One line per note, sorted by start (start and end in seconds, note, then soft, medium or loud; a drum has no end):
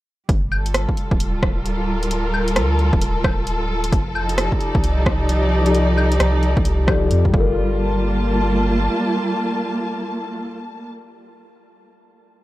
0.29 0.87 G1 loud
0.29 3.93 G3 medium
0.29 kick loud
0.29 closed hi-hat medium
0.52 claves medium
0.56 5.07 F4 medium
0.56 7.34 A4 medium
0.66 closed hi-hat medium
0.74 cross-stick loud
0.74 closed hi-hat medium
0.89 kick medium
0.97 closed hi-hat soft
1.11 2.58 D1 medium
1.11 kick medium
1.20 closed hi-hat medium
1.43 kick loud
1.43 cross-stick loud
1.48 3.93 A#4 medium
1.66 closed hi-hat medium
2.03 closed hi-hat medium
2.11 closed hi-hat medium
2.34 claves medium
2.48 closed hi-hat medium
2.56 2.92 D2 loud
2.56 cross-stick loud
2.56 closed hi-hat medium
2.79 closed hi-hat soft
2.93 3.91 D1 medium
2.93 kick loud
3.01 closed hi-hat medium
3.24 kick loud
3.24 cross-stick loud
3.24 claves soft
3.47 closed hi-hat medium
3.84 closed hi-hat medium
3.92 4.50 F1 loud
3.92 7.33 F3 medium
3.92 kick loud
3.92 closed hi-hat medium
4.15 claves medium
4.22 7.34 D#4 medium
4.29 7.34 G4 medium
4.29 closed hi-hat medium
4.38 7.34 D5 medium
4.38 cross-stick loud
4.38 closed hi-hat medium
4.52 kick medium
4.61 closed hi-hat soft
4.75 6.19 C2 medium
4.75 kick loud
4.84 closed hi-hat medium
5.06 kick loud
5.06 cross-stick loud
5.29 closed hi-hat medium
5.62 6.85 F3 medium
5.62 6.86 D#4 medium
5.62 6.87 G4 medium
5.62 closed hi-hat medium
5.68 6.88 A4 medium
5.68 6.89 D5 medium
5.75 closed hi-hat medium
5.97 claves medium
6.12 closed hi-hat medium
6.20 6.55 C2 loud
6.20 cross-stick loud
6.20 closed hi-hat medium
6.43 closed hi-hat soft
6.57 7.11 C2 medium
6.57 kick loud
6.65 closed hi-hat medium
6.86 6.97 F3 medium
6.86 6.99 D#4 medium
6.86 7.00 G4 medium
6.86 7.01 A4 medium
6.86 7.01 D5 medium
6.86 kick loud
6.86 cross-stick loud
6.86 claves soft
6.99 7.32 F3 medium
6.99 7.33 D#4 medium
7.03 7.34 G4 medium
7.03 7.35 A4 medium
7.03 7.36 D5 medium
7.11 7.33 F2 loud
7.11 closed hi-hat medium
7.25 10.40 G3 medium
7.25 kick medium
7.32 8.89 G1 medium
7.32 10.46 G3 medium
7.32 10.44 F4 medium
7.32 kick loud
7.36 10.48 A4 medium
7.36 10.52 A#4 medium
7.42 10.54 F4 medium
7.74 10.86 A5 medium
7.78 10.90 A#3 medium